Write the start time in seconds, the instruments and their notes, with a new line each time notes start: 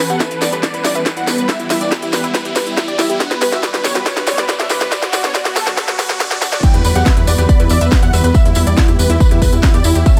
Already playing: riser
0.10 synth pluck G4, supersaw synth F#5, closed hi-hat, tambourine
0.20 supersaw synth B4, synth pluck E5, kick, snare, closed hi-hat, tambourine
0.31 synth pluck E4, supersaw synth B4, closed hi-hat, tambourine
0.41 synth pluck B4, supersaw synth D5, snare, open hi-hat, tambourine
0.52 synth pluck G4, supersaw synth B4, closed hi-hat, tambourine
0.63 supersaw synth D5, synth pluck B5, kick, snare, closed hi-hat, tambourine
0.74 synth pluck E4, supersaw synth B4, closed hi-hat, tambourine
0.84 supersaw synth D5, synth pluck E5, snare, open hi-hat, tambourine
0.95 supersaw synth B4, synth pluck E5, closed hi-hat, tambourine
1.05 supersaw synth B4, synth pluck E5, kick, snare, closed hi-hat, tambourine
1.17 synth pluck E4, supersaw synth F#5, closed hi-hat, tambourine
1.27 supersaw synth B4, synth pluck E6, snare, open hi-hat, tambourine
1.38 supersaw synth B4, synth pluck B4, closed hi-hat, tambourine
1.49 supersaw synth E5, synth pluck B5, kick, snare, closed hi-hat, tambourine
1.59 supersaw synth E4, closed hi-hat, tambourine
1.70 supersaw synth E4, synth pluck E5, snare, open hi-hat, tambourine
1.81 synth pluck E4, supersaw synth D5, closed hi-hat, tambourine
1.92 supersaw synth E4, synth pluck E5, kick, snare, closed hi-hat, tambourine
2.02 supersaw synth E4, synth pluck G4, closed hi-hat, tambourine
2.13 supersaw synth B4, snare, open hi-hat, tambourine
2.23 supersaw synth E4, synth pluck E4, closed hi-hat, tambourine
2.34 supersaw synth B4, synth pluck B5, kick, snare, closed hi-hat, tambourine
2.45 supersaw synth E4, synth pluck G4, closed hi-hat, tambourine
2.55 supersaw synth B4, synth pluck B4, kick, snare, open hi-hat, tambourine
2.67 supersaw synth E4, closed hi-hat, tambourine
2.77 supersaw synth E4, synth pluck E4, kick, snare, closed hi-hat, tambourine
2.88 synth pluck G4, supersaw synth D5, closed hi-hat, tambourine
2.99 supersaw synth E4, synth pluck E4, snare, open hi-hat, tambourine
3.09 supersaw synth E4, synth pluck G4, closed hi-hat, tambourine
3.20 synth pluck D4, supersaw synth F#5, kick, snare, closed hi-hat, tambourine
3.30 supersaw synth B4, snare, closed hi-hat, tambourine
3.41 supersaw synth B4, synth pluck B4, snare, open hi-hat, tambourine
3.52 synth pluck F#4, supersaw synth E5, snare, closed hi-hat, tambourine
3.63 supersaw synth B4, synth pluck D5, kick, snare, closed hi-hat, tambourine
3.74 synth pluck D4, supersaw synth B4, snare, closed hi-hat, tambourine
3.85 synth pluck B4, supersaw synth C#5, snare, open hi-hat, tambourine
3.94 synth pluck F#4, supersaw synth B4, snare, closed hi-hat, tambourine
4.06 supersaw synth C#5, synth pluck B5, kick, snare, closed hi-hat, tambourine
4.17 synth pluck D4, supersaw synth B4, snare, closed hi-hat, tambourine
4.27 supersaw synth C#5, synth pluck D5, snare, open hi-hat, tambourine
4.37 supersaw synth B4, synth pluck D5, snare, closed hi-hat, tambourine
4.49 supersaw synth B4, synth pluck D5, kick, snare, closed hi-hat, tambourine
4.60 synth pluck D4, supersaw synth E5, snare, closed hi-hat, tambourine
4.69 supersaw synth B4, synth pluck D6, snare, open hi-hat, tambourine
4.81 synth pluck B4, supersaw synth B4, snare, closed hi-hat, tambourine
4.92 supersaw synth D5, synth pluck B5, kick, snare, closed hi-hat, tambourine
5.02 supersaw synth F#4, snare, closed hi-hat
5.13 supersaw synth F#4, synth pluck D5, snare, open hi-hat, tambourine
5.24 synth pluck D4, supersaw synth C#5, snare, closed hi-hat, tambourine
5.35 supersaw synth F#4, synth pluck D5, kick, snare, closed hi-hat, tambourine
5.45 synth pluck F#4, supersaw synth F#4, snare, closed hi-hat, tambourine
5.56 supersaw synth A4, snare, open hi-hat, tambourine
5.67 synth pluck D4, supersaw synth F#4, snare, closed hi-hat, tambourine
5.77 supersaw synth A4, synth pluck B5, kick, snare, closed hi-hat, tambourine
5.88 supersaw synth F#4, synth pluck F#4, snare, closed hi-hat, tambourine
5.99 supersaw synth F#4, synth pluck B4, kick, snare, open hi-hat, tambourine
6.09 supersaw synth F#4, snare, closed hi-hat, tambourine
6.20 synth pluck D4, supersaw synth F#4, kick, snare, closed hi-hat, tambourine
6.31 supersaw synth F#4, synth pluck D5, snare, closed hi-hat, tambourine
6.42 synth pluck D4, supersaw synth F#4, snare, open hi-hat, tambourine
6.52 supersaw synth F#4, synth pluck D5, snare, closed hi-hat, tambourine
6.63 synth pluck E4, grand piano G5, supersaw synth G5, kick, closed hi-hat, crash, tambourine
6.74 analog synth bass E2, supersaw synth B4, grand piano B4, closed hi-hat, tambourine
6.84 analog synth bass E2, supersaw synth B4, grand piano B4, synth pluck B4, open hi-hat, tambourine
6.95 analog synth bass E2, synth pluck G4, supersaw synth F#5, grand piano F#5, closed hi-hat, tambourine
7.06 supersaw synth B4, grand piano B4, synth pluck E5, kick, snare, closed hi-hat, tambourine
7.17 analog synth bass E2, synth pluck E4, supersaw synth B4, grand piano B4, closed hi-hat, tambourine
7.27 analog synth bass E2, synth pluck B4, supersaw synth D5, grand piano D5, open hi-hat, tambourine
7.38 analog synth bass E2, synth pluck G4, grand piano B4, supersaw synth B4, closed hi-hat, tambourine
7.49 supersaw synth D5, grand piano D5, synth pluck B5, kick, closed hi-hat, tambourine
7.60 analog synth bass E2, synth pluck E4, supersaw synth B4, grand piano B4, closed hi-hat, tambourine
7.69 analog synth bass E2, supersaw synth D5, grand piano D5, synth pluck E5, open hi-hat, tambourine
7.81 analog synth bass E2, grand piano B4, supersaw synth B4, synth pluck E5, closed hi-hat, tambourine
7.92 grand piano B4, supersaw synth B4, synth pluck E5, kick, snare, closed hi-hat, tambourine
8.02 analog synth bass E2, synth pluck E4, grand piano F#5, supersaw synth F#5, closed hi-hat, tambourine
8.13 analog synth bass E2, grand piano B4, supersaw synth B4, synth pluck E6, open hi-hat, tambourine
8.24 analog synth bass E2, synth pluck B4, grand piano B4, supersaw synth B4, closed hi-hat, tambourine
8.34 grand piano E5, supersaw synth E5, synth pluck B5, kick, closed hi-hat, tambourine
8.45 analog synth bass E2, grand piano E4, supersaw synth E4, closed hi-hat, tambourine
8.55 analog synth bass E2, grand piano E4, supersaw synth E4, synth pluck E5, open hi-hat, tambourine
8.66 analog synth bass E2, synth pluck E4, grand piano D5, supersaw synth D5, closed hi-hat, tambourine
8.77 grand piano E4, supersaw synth E4, synth pluck E5, kick, snare, closed hi-hat, tambourine
8.88 analog synth bass E2, supersaw synth E4, grand piano E4, synth pluck G4, closed hi-hat, tambourine
8.99 analog synth bass E2, grand piano B4, supersaw synth B4, open hi-hat, tambourine
9.10 analog synth bass E2, grand piano E4, supersaw synth E4, synth pluck E4, closed hi-hat, tambourine
9.20 grand piano B4, supersaw synth B4, synth pluck B5, kick, closed hi-hat, tambourine
9.31 analog synth bass E2, supersaw synth E4, grand piano E4, synth pluck G4, closed hi-hat, tambourine
9.42 analog synth bass E2, supersaw synth B4, grand piano B4, synth pluck B4, kick, open hi-hat, tambourine
9.52 analog synth bass E2, supersaw synth E4, grand piano E4, closed hi-hat, tambourine
9.63 supersaw synth E4, grand piano E4, synth pluck E4, kick, snare, closed hi-hat, tambourine
9.74 analog synth bass E2, synth pluck G4, grand piano D5, supersaw synth D5, closed hi-hat, tambourine
9.84 analog synth bass E2, grand piano E4, synth pluck E4, supersaw synth E4, open hi-hat, tambourine
9.95 analog synth bass E2, grand piano E4, supersaw synth E4, synth pluck G4, closed hi-hat, tambourine
10.06 synth pluck C#4, grand piano E5, supersaw synth E5, kick, closed hi-hat, tambourine
10.17 analog synth bass A1, grand piano A4, supersaw synth A4, closed hi-hat